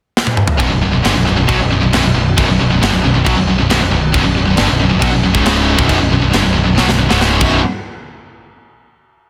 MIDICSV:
0, 0, Header, 1, 6, 480
1, 0, Start_track
1, 0, Key_signature, 2, "minor"
1, 0, Tempo, 442152
1, 651, Time_signature, 4, 2, 24, 8
1, 4968, Tempo, 435414
1, 10174, End_track
2, 0, Start_track
2, 0, Title_t, "Distorted electric guitar"
2, 0, Program_c, 0, 30
2, 6927, Note_on_c, 0, 50, 109
2, 7025, Note_off_c, 0, 50, 0
2, 10174, End_track
3, 0, Start_track
3, 0, Title_t, "Distorted electric guitar"
3, 0, Program_c, 1, 30
3, 626, Note_on_c, 1, 35, 88
3, 631, Note_on_c, 1, 42, 106
3, 743, Note_off_c, 1, 42, 0
3, 745, Note_off_c, 1, 35, 0
3, 756, Note_on_c, 1, 42, 79
3, 758, Note_on_c, 1, 35, 78
3, 869, Note_off_c, 1, 35, 0
3, 869, Note_off_c, 1, 42, 0
3, 882, Note_on_c, 1, 35, 68
3, 882, Note_on_c, 1, 42, 76
3, 978, Note_off_c, 1, 35, 0
3, 984, Note_off_c, 1, 42, 0
3, 991, Note_on_c, 1, 35, 56
3, 997, Note_on_c, 1, 42, 69
3, 1108, Note_off_c, 1, 35, 0
3, 1112, Note_on_c, 1, 43, 105
3, 1113, Note_off_c, 1, 42, 0
3, 1117, Note_on_c, 1, 50, 104
3, 1231, Note_off_c, 1, 43, 0
3, 1232, Note_off_c, 1, 50, 0
3, 1235, Note_on_c, 1, 35, 70
3, 1237, Note_on_c, 1, 42, 73
3, 1341, Note_off_c, 1, 35, 0
3, 1346, Note_off_c, 1, 42, 0
3, 1354, Note_on_c, 1, 35, 67
3, 1359, Note_on_c, 1, 42, 77
3, 1468, Note_off_c, 1, 35, 0
3, 1472, Note_off_c, 1, 42, 0
3, 1481, Note_on_c, 1, 35, 70
3, 1485, Note_on_c, 1, 42, 81
3, 1590, Note_off_c, 1, 42, 0
3, 1594, Note_on_c, 1, 47, 92
3, 1605, Note_on_c, 1, 54, 114
3, 1608, Note_off_c, 1, 35, 0
3, 1718, Note_off_c, 1, 47, 0
3, 1720, Note_on_c, 1, 35, 66
3, 1723, Note_off_c, 1, 54, 0
3, 1724, Note_on_c, 1, 42, 72
3, 1834, Note_off_c, 1, 35, 0
3, 1837, Note_off_c, 1, 42, 0
3, 1847, Note_on_c, 1, 35, 69
3, 1850, Note_on_c, 1, 42, 73
3, 1957, Note_off_c, 1, 35, 0
3, 1961, Note_off_c, 1, 42, 0
3, 1970, Note_on_c, 1, 35, 70
3, 1974, Note_on_c, 1, 42, 73
3, 2074, Note_off_c, 1, 35, 0
3, 2080, Note_off_c, 1, 42, 0
3, 2087, Note_on_c, 1, 35, 95
3, 2093, Note_on_c, 1, 42, 100
3, 2196, Note_off_c, 1, 35, 0
3, 2197, Note_off_c, 1, 42, 0
3, 2209, Note_on_c, 1, 35, 67
3, 2210, Note_on_c, 1, 42, 67
3, 2318, Note_off_c, 1, 35, 0
3, 2319, Note_off_c, 1, 42, 0
3, 2331, Note_on_c, 1, 35, 64
3, 2332, Note_on_c, 1, 42, 72
3, 2527, Note_off_c, 1, 35, 0
3, 2527, Note_off_c, 1, 42, 0
3, 2574, Note_on_c, 1, 35, 92
3, 2582, Note_on_c, 1, 42, 109
3, 2686, Note_off_c, 1, 35, 0
3, 2693, Note_off_c, 1, 42, 0
3, 2699, Note_on_c, 1, 35, 67
3, 2704, Note_on_c, 1, 42, 76
3, 2800, Note_off_c, 1, 42, 0
3, 2802, Note_off_c, 1, 35, 0
3, 2813, Note_on_c, 1, 42, 73
3, 2815, Note_on_c, 1, 35, 64
3, 2914, Note_off_c, 1, 35, 0
3, 2920, Note_off_c, 1, 42, 0
3, 2927, Note_on_c, 1, 35, 64
3, 2933, Note_on_c, 1, 42, 64
3, 3051, Note_off_c, 1, 35, 0
3, 3056, Note_off_c, 1, 42, 0
3, 3056, Note_on_c, 1, 43, 96
3, 3066, Note_on_c, 1, 50, 115
3, 3168, Note_off_c, 1, 43, 0
3, 3168, Note_off_c, 1, 50, 0
3, 3173, Note_on_c, 1, 35, 72
3, 3173, Note_on_c, 1, 42, 80
3, 3263, Note_off_c, 1, 35, 0
3, 3272, Note_off_c, 1, 42, 0
3, 3276, Note_on_c, 1, 35, 68
3, 3285, Note_on_c, 1, 42, 73
3, 3395, Note_off_c, 1, 42, 0
3, 3396, Note_off_c, 1, 35, 0
3, 3408, Note_on_c, 1, 42, 76
3, 3409, Note_on_c, 1, 35, 70
3, 3521, Note_off_c, 1, 42, 0
3, 3525, Note_on_c, 1, 47, 90
3, 3529, Note_on_c, 1, 54, 102
3, 3533, Note_off_c, 1, 35, 0
3, 3644, Note_off_c, 1, 47, 0
3, 3646, Note_off_c, 1, 54, 0
3, 3646, Note_on_c, 1, 35, 65
3, 3651, Note_on_c, 1, 42, 74
3, 3755, Note_off_c, 1, 35, 0
3, 3766, Note_off_c, 1, 42, 0
3, 3768, Note_on_c, 1, 35, 66
3, 3779, Note_on_c, 1, 42, 79
3, 3875, Note_off_c, 1, 35, 0
3, 3877, Note_off_c, 1, 42, 0
3, 3888, Note_on_c, 1, 35, 76
3, 3890, Note_on_c, 1, 42, 81
3, 3995, Note_off_c, 1, 35, 0
3, 4001, Note_off_c, 1, 42, 0
3, 4008, Note_on_c, 1, 35, 89
3, 4014, Note_on_c, 1, 42, 105
3, 4118, Note_off_c, 1, 35, 0
3, 4127, Note_off_c, 1, 42, 0
3, 4131, Note_on_c, 1, 35, 67
3, 4141, Note_on_c, 1, 42, 67
3, 4232, Note_off_c, 1, 35, 0
3, 4238, Note_off_c, 1, 42, 0
3, 4245, Note_on_c, 1, 35, 62
3, 4251, Note_on_c, 1, 42, 70
3, 4441, Note_off_c, 1, 35, 0
3, 4444, Note_off_c, 1, 42, 0
3, 4475, Note_on_c, 1, 35, 83
3, 4484, Note_on_c, 1, 42, 112
3, 4582, Note_off_c, 1, 35, 0
3, 4591, Note_off_c, 1, 42, 0
3, 4595, Note_on_c, 1, 35, 77
3, 4604, Note_on_c, 1, 42, 76
3, 4705, Note_off_c, 1, 35, 0
3, 4705, Note_off_c, 1, 42, 0
3, 4718, Note_on_c, 1, 35, 70
3, 4718, Note_on_c, 1, 42, 73
3, 4819, Note_off_c, 1, 35, 0
3, 4829, Note_off_c, 1, 42, 0
3, 4832, Note_on_c, 1, 35, 62
3, 4842, Note_on_c, 1, 42, 67
3, 4944, Note_off_c, 1, 35, 0
3, 4949, Note_on_c, 1, 43, 94
3, 4950, Note_off_c, 1, 42, 0
3, 4954, Note_on_c, 1, 50, 103
3, 5073, Note_off_c, 1, 43, 0
3, 5076, Note_off_c, 1, 50, 0
3, 5084, Note_on_c, 1, 35, 70
3, 5087, Note_on_c, 1, 42, 82
3, 5193, Note_off_c, 1, 35, 0
3, 5196, Note_off_c, 1, 42, 0
3, 5206, Note_on_c, 1, 35, 68
3, 5209, Note_on_c, 1, 42, 82
3, 5300, Note_off_c, 1, 35, 0
3, 5307, Note_off_c, 1, 42, 0
3, 5313, Note_on_c, 1, 35, 78
3, 5320, Note_on_c, 1, 42, 73
3, 5423, Note_off_c, 1, 42, 0
3, 5427, Note_on_c, 1, 47, 94
3, 5429, Note_on_c, 1, 54, 101
3, 5443, Note_off_c, 1, 35, 0
3, 5553, Note_off_c, 1, 47, 0
3, 5555, Note_off_c, 1, 54, 0
3, 5561, Note_on_c, 1, 35, 65
3, 5562, Note_on_c, 1, 42, 78
3, 5675, Note_off_c, 1, 35, 0
3, 5677, Note_off_c, 1, 42, 0
3, 5688, Note_on_c, 1, 35, 63
3, 5690, Note_on_c, 1, 42, 73
3, 5800, Note_off_c, 1, 35, 0
3, 5804, Note_on_c, 1, 37, 100
3, 5809, Note_off_c, 1, 42, 0
3, 5813, Note_on_c, 1, 44, 115
3, 5817, Note_on_c, 1, 49, 107
3, 6283, Note_off_c, 1, 37, 0
3, 6288, Note_off_c, 1, 44, 0
3, 6290, Note_off_c, 1, 49, 0
3, 6292, Note_on_c, 1, 35, 96
3, 6301, Note_on_c, 1, 42, 97
3, 6401, Note_off_c, 1, 42, 0
3, 6403, Note_off_c, 1, 35, 0
3, 6415, Note_on_c, 1, 42, 111
3, 6417, Note_on_c, 1, 35, 100
3, 6515, Note_off_c, 1, 35, 0
3, 6518, Note_off_c, 1, 42, 0
3, 6529, Note_on_c, 1, 35, 69
3, 6531, Note_on_c, 1, 42, 78
3, 6629, Note_off_c, 1, 35, 0
3, 6634, Note_off_c, 1, 42, 0
3, 6642, Note_on_c, 1, 35, 62
3, 6647, Note_on_c, 1, 42, 71
3, 6743, Note_off_c, 1, 35, 0
3, 6753, Note_off_c, 1, 42, 0
3, 6756, Note_on_c, 1, 35, 60
3, 6766, Note_on_c, 1, 42, 72
3, 6871, Note_off_c, 1, 35, 0
3, 6876, Note_off_c, 1, 42, 0
3, 6876, Note_on_c, 1, 43, 99
3, 6880, Note_on_c, 1, 50, 123
3, 6991, Note_off_c, 1, 43, 0
3, 6996, Note_on_c, 1, 35, 71
3, 7001, Note_off_c, 1, 50, 0
3, 7006, Note_on_c, 1, 42, 73
3, 7099, Note_off_c, 1, 35, 0
3, 7105, Note_off_c, 1, 42, 0
3, 7112, Note_on_c, 1, 35, 65
3, 7118, Note_on_c, 1, 42, 84
3, 7224, Note_off_c, 1, 35, 0
3, 7229, Note_off_c, 1, 42, 0
3, 7237, Note_on_c, 1, 35, 73
3, 7243, Note_on_c, 1, 42, 68
3, 7359, Note_off_c, 1, 42, 0
3, 7364, Note_on_c, 1, 47, 87
3, 7366, Note_off_c, 1, 35, 0
3, 7370, Note_on_c, 1, 54, 100
3, 7482, Note_off_c, 1, 47, 0
3, 7486, Note_off_c, 1, 54, 0
3, 7492, Note_on_c, 1, 35, 64
3, 7496, Note_on_c, 1, 42, 75
3, 7606, Note_off_c, 1, 35, 0
3, 7607, Note_off_c, 1, 42, 0
3, 7619, Note_on_c, 1, 35, 67
3, 7620, Note_on_c, 1, 42, 77
3, 7733, Note_off_c, 1, 35, 0
3, 7738, Note_off_c, 1, 42, 0
3, 7738, Note_on_c, 1, 37, 91
3, 7742, Note_on_c, 1, 44, 99
3, 7744, Note_on_c, 1, 49, 109
3, 8080, Note_off_c, 1, 37, 0
3, 8084, Note_on_c, 1, 35, 85
3, 8091, Note_off_c, 1, 44, 0
3, 8096, Note_on_c, 1, 42, 94
3, 8098, Note_off_c, 1, 49, 0
3, 8102, Note_on_c, 1, 47, 97
3, 8281, Note_off_c, 1, 35, 0
3, 8287, Note_off_c, 1, 42, 0
3, 8290, Note_off_c, 1, 47, 0
3, 10174, End_track
4, 0, Start_track
4, 0, Title_t, "Distorted electric guitar"
4, 0, Program_c, 2, 30
4, 4888, Note_on_c, 2, 35, 71
4, 4893, Note_on_c, 2, 42, 80
4, 4989, Note_off_c, 2, 35, 0
4, 4991, Note_off_c, 2, 42, 0
4, 4994, Note_on_c, 2, 43, 93
4, 5096, Note_off_c, 2, 43, 0
4, 5130, Note_on_c, 2, 35, 64
4, 5231, Note_off_c, 2, 35, 0
4, 5368, Note_on_c, 2, 42, 66
4, 5469, Note_off_c, 2, 42, 0
4, 5473, Note_on_c, 2, 47, 95
4, 5576, Note_off_c, 2, 47, 0
4, 10174, End_track
5, 0, Start_track
5, 0, Title_t, "Picked electric bass"
5, 0, Program_c, 3, 34
5, 644, Note_on_c, 3, 23, 97
5, 759, Note_off_c, 3, 23, 0
5, 777, Note_on_c, 3, 23, 75
5, 887, Note_off_c, 3, 23, 0
5, 900, Note_on_c, 3, 23, 87
5, 1008, Note_off_c, 3, 23, 0
5, 1027, Note_on_c, 3, 23, 75
5, 1133, Note_off_c, 3, 23, 0
5, 1139, Note_on_c, 3, 31, 97
5, 1249, Note_off_c, 3, 31, 0
5, 1268, Note_on_c, 3, 23, 83
5, 1374, Note_off_c, 3, 23, 0
5, 1402, Note_on_c, 3, 23, 87
5, 1501, Note_off_c, 3, 23, 0
5, 1509, Note_on_c, 3, 23, 76
5, 1608, Note_off_c, 3, 23, 0
5, 1614, Note_on_c, 3, 35, 86
5, 1727, Note_off_c, 3, 35, 0
5, 1767, Note_on_c, 3, 23, 73
5, 1864, Note_off_c, 3, 23, 0
5, 1883, Note_on_c, 3, 23, 84
5, 1980, Note_off_c, 3, 23, 0
5, 1986, Note_on_c, 3, 23, 83
5, 2094, Note_off_c, 3, 23, 0
5, 2108, Note_on_c, 3, 23, 99
5, 2210, Note_off_c, 3, 23, 0
5, 2217, Note_on_c, 3, 23, 87
5, 2324, Note_off_c, 3, 23, 0
5, 2330, Note_on_c, 3, 23, 80
5, 2557, Note_off_c, 3, 23, 0
5, 2587, Note_on_c, 3, 23, 94
5, 2687, Note_off_c, 3, 23, 0
5, 2693, Note_on_c, 3, 23, 75
5, 2807, Note_off_c, 3, 23, 0
5, 2824, Note_on_c, 3, 23, 88
5, 2933, Note_off_c, 3, 23, 0
5, 2960, Note_on_c, 3, 23, 77
5, 3061, Note_off_c, 3, 23, 0
5, 3069, Note_on_c, 3, 31, 99
5, 3175, Note_off_c, 3, 31, 0
5, 3186, Note_on_c, 3, 23, 82
5, 3294, Note_off_c, 3, 23, 0
5, 3305, Note_on_c, 3, 23, 86
5, 3413, Note_off_c, 3, 23, 0
5, 3418, Note_on_c, 3, 23, 77
5, 3529, Note_off_c, 3, 23, 0
5, 3538, Note_on_c, 3, 35, 89
5, 3649, Note_off_c, 3, 35, 0
5, 3658, Note_on_c, 3, 23, 76
5, 3769, Note_off_c, 3, 23, 0
5, 3782, Note_on_c, 3, 23, 83
5, 3891, Note_off_c, 3, 23, 0
5, 3906, Note_on_c, 3, 23, 88
5, 4013, Note_off_c, 3, 23, 0
5, 4029, Note_on_c, 3, 23, 98
5, 4134, Note_off_c, 3, 23, 0
5, 4146, Note_on_c, 3, 23, 82
5, 4247, Note_off_c, 3, 23, 0
5, 4254, Note_on_c, 3, 23, 92
5, 4476, Note_off_c, 3, 23, 0
5, 4499, Note_on_c, 3, 23, 97
5, 4607, Note_off_c, 3, 23, 0
5, 4622, Note_on_c, 3, 23, 80
5, 4729, Note_off_c, 3, 23, 0
5, 4749, Note_on_c, 3, 23, 90
5, 4852, Note_off_c, 3, 23, 0
5, 4860, Note_on_c, 3, 23, 76
5, 4967, Note_off_c, 3, 23, 0
5, 4993, Note_on_c, 3, 31, 106
5, 5095, Note_off_c, 3, 31, 0
5, 5105, Note_on_c, 3, 23, 79
5, 5210, Note_off_c, 3, 23, 0
5, 5234, Note_on_c, 3, 23, 87
5, 5336, Note_off_c, 3, 23, 0
5, 5353, Note_on_c, 3, 23, 75
5, 5448, Note_off_c, 3, 23, 0
5, 5454, Note_on_c, 3, 35, 102
5, 5566, Note_off_c, 3, 35, 0
5, 5604, Note_on_c, 3, 23, 68
5, 5702, Note_off_c, 3, 23, 0
5, 5729, Note_on_c, 3, 23, 82
5, 5812, Note_off_c, 3, 23, 0
5, 5819, Note_on_c, 3, 25, 99
5, 6264, Note_off_c, 3, 25, 0
5, 6304, Note_on_c, 3, 23, 102
5, 6412, Note_off_c, 3, 23, 0
5, 6422, Note_on_c, 3, 23, 95
5, 6531, Note_off_c, 3, 23, 0
5, 6542, Note_on_c, 3, 23, 80
5, 6646, Note_off_c, 3, 23, 0
5, 6652, Note_on_c, 3, 23, 88
5, 6766, Note_off_c, 3, 23, 0
5, 6777, Note_on_c, 3, 23, 80
5, 6888, Note_off_c, 3, 23, 0
5, 6911, Note_on_c, 3, 31, 101
5, 7016, Note_off_c, 3, 31, 0
5, 7031, Note_on_c, 3, 23, 84
5, 7136, Note_off_c, 3, 23, 0
5, 7154, Note_on_c, 3, 23, 86
5, 7257, Note_off_c, 3, 23, 0
5, 7281, Note_on_c, 3, 23, 79
5, 7381, Note_off_c, 3, 23, 0
5, 7397, Note_on_c, 3, 35, 89
5, 7498, Note_off_c, 3, 35, 0
5, 7519, Note_on_c, 3, 23, 71
5, 7620, Note_off_c, 3, 23, 0
5, 7644, Note_on_c, 3, 23, 83
5, 7742, Note_off_c, 3, 23, 0
5, 7759, Note_on_c, 3, 25, 98
5, 8082, Note_off_c, 3, 25, 0
5, 8096, Note_on_c, 3, 23, 92
5, 8318, Note_off_c, 3, 23, 0
5, 10174, End_track
6, 0, Start_track
6, 0, Title_t, "Drums"
6, 185, Note_on_c, 9, 38, 76
6, 291, Note_on_c, 9, 48, 74
6, 293, Note_off_c, 9, 38, 0
6, 400, Note_off_c, 9, 48, 0
6, 404, Note_on_c, 9, 47, 89
6, 513, Note_off_c, 9, 47, 0
6, 516, Note_on_c, 9, 43, 108
6, 624, Note_off_c, 9, 43, 0
6, 650, Note_on_c, 9, 36, 110
6, 656, Note_on_c, 9, 49, 60
6, 758, Note_off_c, 9, 36, 0
6, 764, Note_off_c, 9, 49, 0
6, 1136, Note_on_c, 9, 49, 65
6, 1147, Note_on_c, 9, 38, 118
6, 1244, Note_off_c, 9, 49, 0
6, 1255, Note_off_c, 9, 38, 0
6, 1615, Note_on_c, 9, 36, 114
6, 1618, Note_on_c, 9, 49, 61
6, 1724, Note_off_c, 9, 36, 0
6, 1727, Note_off_c, 9, 49, 0
6, 2096, Note_on_c, 9, 49, 69
6, 2107, Note_on_c, 9, 38, 124
6, 2205, Note_off_c, 9, 49, 0
6, 2216, Note_off_c, 9, 38, 0
6, 2583, Note_on_c, 9, 36, 107
6, 2589, Note_on_c, 9, 49, 64
6, 2691, Note_off_c, 9, 36, 0
6, 2697, Note_off_c, 9, 49, 0
6, 3068, Note_on_c, 9, 49, 66
6, 3079, Note_on_c, 9, 38, 116
6, 3177, Note_off_c, 9, 49, 0
6, 3188, Note_off_c, 9, 38, 0
6, 3544, Note_on_c, 9, 36, 107
6, 3548, Note_on_c, 9, 49, 59
6, 3653, Note_off_c, 9, 36, 0
6, 3657, Note_off_c, 9, 49, 0
6, 4017, Note_on_c, 9, 49, 64
6, 4028, Note_on_c, 9, 38, 118
6, 4126, Note_off_c, 9, 49, 0
6, 4137, Note_off_c, 9, 38, 0
6, 4497, Note_on_c, 9, 36, 109
6, 4499, Note_on_c, 9, 49, 64
6, 4605, Note_off_c, 9, 36, 0
6, 4608, Note_off_c, 9, 49, 0
6, 4962, Note_on_c, 9, 49, 65
6, 4972, Note_on_c, 9, 38, 116
6, 5072, Note_off_c, 9, 49, 0
6, 5083, Note_off_c, 9, 38, 0
6, 5458, Note_on_c, 9, 36, 106
6, 5463, Note_on_c, 9, 49, 63
6, 5568, Note_off_c, 9, 36, 0
6, 5573, Note_off_c, 9, 49, 0
6, 5818, Note_on_c, 9, 36, 109
6, 5928, Note_off_c, 9, 36, 0
6, 5938, Note_on_c, 9, 49, 68
6, 5949, Note_on_c, 9, 38, 111
6, 6048, Note_off_c, 9, 49, 0
6, 6059, Note_off_c, 9, 38, 0
6, 6302, Note_on_c, 9, 36, 112
6, 6412, Note_off_c, 9, 36, 0
6, 6420, Note_on_c, 9, 36, 101
6, 6422, Note_on_c, 9, 49, 61
6, 6530, Note_off_c, 9, 36, 0
6, 6533, Note_off_c, 9, 49, 0
6, 6905, Note_on_c, 9, 49, 64
6, 6916, Note_on_c, 9, 38, 107
6, 7015, Note_off_c, 9, 49, 0
6, 7026, Note_off_c, 9, 38, 0
6, 7395, Note_on_c, 9, 38, 69
6, 7506, Note_off_c, 9, 38, 0
6, 7517, Note_on_c, 9, 38, 62
6, 7627, Note_off_c, 9, 38, 0
6, 7756, Note_on_c, 9, 38, 75
6, 7866, Note_off_c, 9, 38, 0
6, 7875, Note_on_c, 9, 38, 93
6, 7985, Note_off_c, 9, 38, 0
6, 8088, Note_on_c, 9, 57, 87
6, 8093, Note_on_c, 9, 36, 110
6, 8198, Note_off_c, 9, 57, 0
6, 8203, Note_off_c, 9, 36, 0
6, 10174, End_track
0, 0, End_of_file